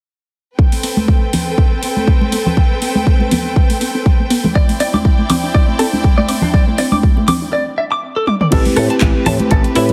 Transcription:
0.59 G3 C4 A4 B4 G5, kick
0.72 A3, open hi-hat
0.83 B3, open hi-hat
0.97 C4, high conga
1.08 G3, kick
1.22 A3
1.33 B3, open hi-hat, low conga
1.47 C4
1.58 G3, kick
1.71 A3
1.83 B3, open hi-hat
1.96 C4, high conga
2.07 G3, kick
2.21 A3, high conga
2.32 B3, open hi-hat
2.46 C4, low conga
2.57 G3, kick
2.70 A3
2.82 B3, open hi-hat
2.95 C4, high conga
3.07 G3, kick
3.20 A3, high conga
3.31 B3, open hi-hat, low conga
3.45 C4
3.56 G3, kick
3.70 A3, open hi-hat
3.81 B3, open hi-hat
3.95 C4
4.05 G3, kick
4.19 A3
4.30 B3, open hi-hat
4.44 C4, high conga, low conga
4.55 G3 C4 E4 D5 G5, kick
4.69 A3, open hi-hat
4.80 C4 D5, open hi-hat
4.94 D4 D6, high conga
5.05 G3, kick
5.18 A3
5.30 C4 D6, open hi-hat, low conga
5.43 D4
5.54 G3 D5, kick
5.68 A3
5.79 C4 A4, open hi-hat
5.93 D4, high conga
6.04 G3, kick
6.18 A3 D5, high conga
6.29 C4 D6, open hi-hat
6.42 D4, low conga
6.54 G3 D5, kick
6.67 A3
6.78 C4 D5, open hi-hat
6.92 D4 D6, high conga
7.03 G3, kick
7.17 A3, high conga
7.28 C4 D6, open hi-hat, low conga
7.42 D4
7.53 D5
7.78 E5
7.92 D6
8.16 A4
8.27 D6, high tom
8.41 D5, mid tom
8.51 A1 A3 C4 E4 G4 A4 B4, kick, closed hi-hat, crash
8.65 open hi-hat, high conga
8.76 A2 A4, cross-stick, open hi-hat
8.90 A5, closed hi-hat
9.01 A1, kick, clap, closed hi-hat, high conga
9.26 A2 A5, open hi-hat, low conga
9.40 closed hi-hat, high conga
9.51 A1 A4, kick, closed hi-hat
9.64 closed hi-hat
9.75 A2 C4 E4 G4 B4, open hi-hat
9.89 closed hi-hat, high conga

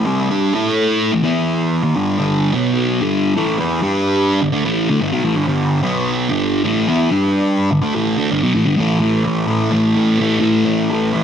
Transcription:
0.05 C3 G3 C4
0.29 G3 D4 G4
0.54 A3 E4 A4
1.12 A2 E3
1.23 E3 B3 E4
1.83 D#3 A#3
1.95 G2 D3 G3
2.19 G2 D3 G3
2.54 B2 F#3 B3
3.00 G2 D3 G3
3.36 A2 E3 A3
3.59 E3 B3 E4
3.82 G3 D4 G4
4.41 G2 D3
4.52 D3 A3
4.65 A2 E3 A3
4.89 D3 A3
5.00 G2 D3
5.12 B2 F#3
5.24 A2 E3
5.36 G2 D3
5.47 G2 D3 G3
5.82 B2 F#3 B3
6.29 G2 D3 G3
6.64 A2 E3 A3
6.88 E3 B3 E4
7.11 G3 D4 G4
7.71 G2 D3
7.82 D3 A3
7.95 A2 E3 A3
8.17 D3 A3
8.30 G2 D3
8.43 B2 F#3
8.54 A2 E3
8.66 G2 D3
8.77 A2 E3 A3
9.00 E3 A3
9.24 A2 E3 A3
9.47 E3 A3
9.71 A2 E3 A3
9.95 E3 A3
10.19 A2 E3 A3
10.41 A2 E3 A3
10.66 E3 A3
10.91 A2 E3 A3
11.13 E3 A3

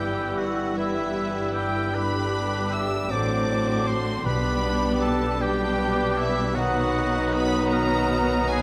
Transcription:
Already playing: G1 G2 E3 G3 B3 E4 G4 B4 G5 E6
0.38 F#4 G4 F#5
0.76 E3 G3 B3 E4 B4 E5 E6
1.17 G4
1.53 E4 G4 G5
1.91 G2 G3 D4 B4
1.96 D3 G3 D4 G4 B5 D6
2.34 B3
2.72 D4 G4 E5 E6
3.08 A1 A2 F#3 C4 C5 D5 D6
3.12 D3 C4 D4 F#4
3.50 C4
3.87 D4 F#4 C5 C6
4.25 B1 B2 G3 B3 D4 G4 B4 B5 D6
4.64 B3
5.01 G4 A4 A5
5.39 G3 B3 D4 G4 B4 G5 D6
5.43 G3
5.79 G4
6.17 D4 E4 E5
6.55 B2 D#3 F#3 B3 D#4 F#4 B4 F#5 D#6
6.94 B3
7.32 F#4 B4 B5
7.69 A#4 B4 A#5
8.10 F#4
8.49 D#4 G#4 G#5

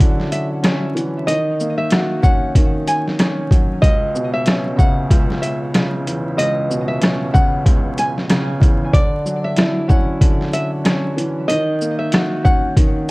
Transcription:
Already playing: F#3 C#4 E4
0.00 D3, kick, closed hi-hat
0.20 snare
0.32 E5, closed hi-hat, shaker
0.63 C#4, cross-stick, snare, closed hi-hat
0.95 E3, closed hi-hat, shaker
1.27 D#3 D#5, closed hi-hat
1.60 A#3, shaker
1.78 E5
1.91 F#4, cross-stick, snare, closed hi-hat
2.23 C#4 F#5, kick, shaker
2.55 D#3, kick, closed hi-hat
2.87 G#5, closed hi-hat, shaker
3.08 snare
3.19 C#4, cross-stick, snare, closed hi-hat
3.51 F#3, kick, closed hi-hat, shaker
3.82 C#2 D#5, kick, closed hi-hat
4.14 B2, shaker
4.34 E5
4.46 C#4, cross-stick, snare, closed hi-hat
4.77 C#3 F#5, kick, shaker
5.11 C#2, kick, closed hi-hat
5.31 snare
5.42 E5, closed hi-hat, shaker
5.74 C#3, cross-stick, snare, closed hi-hat
6.07 E2, closed hi-hat, shaker
6.37 C#2 D#5, closed hi-hat
6.69 B2, shaker
6.88 E5
7.01 C#4, cross-stick, snare, closed hi-hat
7.33 C#3 F#5, kick, shaker
7.65 C#2, kick, closed hi-hat
7.98 G#5, closed hi-hat, shaker
8.18 snare
8.30 C#3, cross-stick, snare, closed hi-hat
8.60 E2, kick, closed hi-hat, shaker
8.93 D3 D5, kick, closed hi-hat
9.25 F#3, shaker
9.44 E5
9.57 E4, cross-stick, snare, closed hi-hat
9.88 C#4 F#5, kick, shaker
10.21 D3, kick, closed hi-hat
10.41 snare
10.53 E5, closed hi-hat, shaker
10.84 C#4, cross-stick, snare, closed hi-hat
11.16 E3, closed hi-hat, shaker
11.48 D#3 D#5, closed hi-hat
11.81 A#3, shaker
11.99 E5
12.12 F#4, cross-stick, snare, closed hi-hat
12.44 C#4 F#5, kick, shaker
12.77 D#3, kick, closed hi-hat

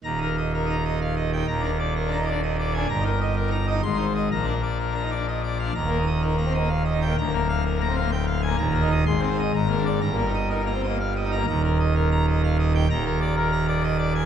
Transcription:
0.04 D#1 D#2 A#5
0.17 D#4
0.22 A#4
0.38 D#5
0.54 A#4
0.65 D#4
0.70 A#5
0.85 D#4 D#5
1.01 F5
1.16 D#5
1.33 D#4 G5
1.48 D#1 D#2 A#5
1.60 D4 A#4
1.79 D5
1.96 A#4
2.07 D4
2.11 A#5
2.19 D#4
2.26 D5
2.31 D4
2.43 D#5
2.59 D5
2.74 D4 G#5
2.89 G1 G2 A#5
3.00 D#4
3.05 A#4
3.21 D#5
3.36 A#4
3.48 D#4 A#5
3.67 D#4 D#5
3.83 G#1 G#2 C6
3.94 D#4 C5
4.14 D#5
4.31 A#1 A#2 A#5
4.43 D4 A#4
4.63 D5
4.79 A#4
4.92 D4 A#5
5.03 D#4
5.11 D5
5.16 D4
5.28 D#5
5.43 D5
5.59 D4 F5
5.75 D#1 D#2 A#5
5.87 A#3 A#4
5.99 D#4
6.07 D#5
6.22 D#4 A#4
6.34 A#3 A#5
6.46 C4
6.54 A#3 D#5
6.69 F5
6.85 D#5
6.93 D#4
7.02 G5
7.07 A#3
7.18 D1 D2 A#5
7.30 A#3 A#4
7.49 F5
7.65 A#4
7.77 A#3
7.81 A#5
7.89 C4
7.96 F5
8.00 A#3
8.12 G5
8.27 F5
8.42 G#5
8.47 A#3
8.58 D#1 D#2 A#5
8.70 A#3 A#4
8.82 D#4
8.91 D#5
9.06 G#1 G#2 C6
9.19 C4 C5
9.31 D#4
9.39 D#5
9.54 G#1 G#2 A#5
9.66 A#3
9.70 A#4
9.77 D4
9.86 D5
10.01 G1 G2 A#5
10.13 A#3
10.17 A#4
10.26 D#4
10.34 D#5
10.50 D#4 A#4
10.63 A#3
10.67 A#5
10.74 C4
10.83 A#3 D#5
11.00 F5
11.16 D#5
11.24 D#4
11.32 A#5
11.36 A#3
11.48 D#1 D#2 A#5
11.64 A#4
11.80 D#5
11.95 A#4
12.12 A#5
12.28 D#5
12.44 F5
12.59 D#5
12.75 G5
12.90 D#1 D#2 A#5
13.05 A#4
13.21 D5
13.37 A#4
13.52 A#5
13.68 D5
13.83 D#5
13.98 D5
14.15 G#5

